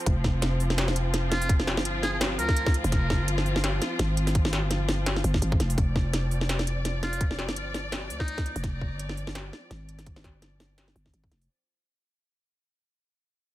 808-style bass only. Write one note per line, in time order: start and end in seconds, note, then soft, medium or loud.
0.07 1.79 F1 loud
1.77 2.40 G1 medium
2.39 2.83 D2 loud
2.84 3.22 F1 loud
3.20 3.80 G1 medium
3.99 4.64 G#1 medium
4.63 5.23 G1 medium
5.24 5.41 G1 medium
5.42 5.59 G#1 medium
5.60 5.77 F1 loud
5.78 7.50 F1 loud
7.49 8.12 G1 medium
8.10 8.54 D2 loud
8.56 8.93 F1 loud
8.91 9.52 G1 medium
9.71 10.36 G#1 medium
10.34 10.95 G1 medium
10.96 11.13 G1 medium
11.14 11.30 G#1 medium
11.32 11.48 F1 loud